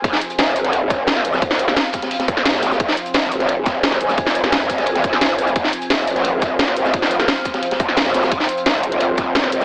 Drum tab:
HH |x-xxxxxxx-x-xxx-|xxx-x-xxxxx-xxxx|x-xxxxxxx-x-xxxx|xxx-x-xxxxx-x-xx|
SH |--xx--x---x---xx|--xx--x---x---xx|--xx--x---x---xx|--xx--x---x---xx|
SD |-o--o--o--o-oo-o|-o-oo-oo-o-ooooo|-o--o--o--o-oo-o|-o-oo-oo-o-oo---|
BD |o---------o-----|o-----o---o-----|o---------o-----|o-----o---o-----|

HH |x-xxxxxxx-x-xxx-|x-x-x-xxxxx-xxxx|x-xxxxxxx-x-xxx-|
SH |--xx--x---x---xx|--xx--x---x---xx|--xx--x---x---xx|
SD |-o--o--o--o-oo-o|-o-oo-oo-o-ooooo|-o--o-----o-oo-o|
BD |o---------o-----|o-----o---o-----|o---------o-----|